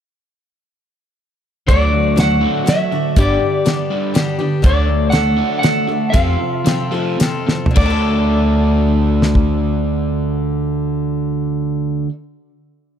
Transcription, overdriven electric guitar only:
1.67 D3 F#3 A3
1.92 D3 F#3
2.16 D3 F#3
2.41 D3 F#3 A3
2.65 D3 F#3
2.92 D3 F#3
3.17 G2 D3 G3
3.41 G2 D3
3.66 G2 D3
3.90 G2 D3 G3
4.15 G2 D3
4.40 G2 D3
4.64 D3 A3 D4
4.89 D3 A3
5.15 D3 A3
5.37 D3 A3 D4
5.62 D3 A3
5.87 D3 A3
6.12 F2 C3 F3
6.39 F2 C3
6.64 F2 C3
6.91 F2 C3 F3
7.18 F2 C3
7.47 F2 C3
7.75 D3 D4 F#4
7.79 A4

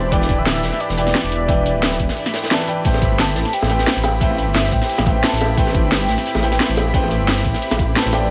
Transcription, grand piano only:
Already playing: E3 E4 B4 D5 G5
0.11 E3 E4 B4 D5 G5
0.96 E3 E4 B4 D5 G5
1.48 E3 E4 B4 D5 G5
2.50 E3 E4 B4 D5 A5
2.68 E3 E4 B4 D5 G5
2.84 A3 E4 B4 C5 G5
3.69 A3 E4 B4 C5 G5
4.20 A3 E4 B4 C5 G5
5.05 A3 E4 B4 C5 G5
5.57 A3 E4 B4 C5 G5
6.42 A3 E4 B4 C5 G5
6.93 A3 E4 B4 C5 G5
7.96 A3 E4 B4 C5 A5
8.13 A3 E4 B4 C5 G5

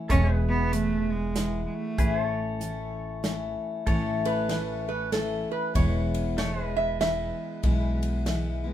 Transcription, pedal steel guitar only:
0.09 A4 C#5
0.29 G#4
0.36 B4
1.99 G#4 B4
2.19 A4
2.25 C#5
3.87 A4 C#5
6.38 A3 C#5
6.58 G#3
6.64 B4

